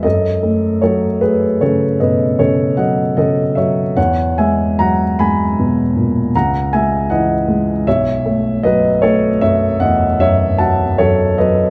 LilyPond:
<<
  \new Staff \with { instrumentName = "Grand piano" } { \time 5/4 \key fis \dorian \tempo 4 = 77 <a' dis''>4 <a' cis''>8 <gis' b'>8 <a' cis''>8 <b' dis''>8 <a' cis''>8 <dis'' fis''>8 <a' dis''>8 <cis'' e''>8 | <cis'' fis''>8 <e'' gis''>8 <fis'' ais''>8 <gis'' b''>4. <fis'' ais''>8 <e'' gis''>8 <dis'' fis''>4 | <cis'' e''>4 <b' dis''>8 <a' cis''>8 <cis'' e''>8 <dis'' fis''>8 <cis'' e''>8 <fis'' a''>8 <a' cis''>8 <b' dis''>8 | }
  \new Staff \with { instrumentName = "Grand piano" } { \clef bass \time 5/4 \key fis \dorian fis,8 a8 fis8 a8 cis8 b,8 cis8 fis8 cis8 fis8 | e,8 gis8 fis8 gis8 b,8 ais,8 cis,8 gis8 e8 gis8 | b,,8 a8 fis8 a8 fis,8 e,8 fis,8 fis8 fis,8 fis8 | }
>>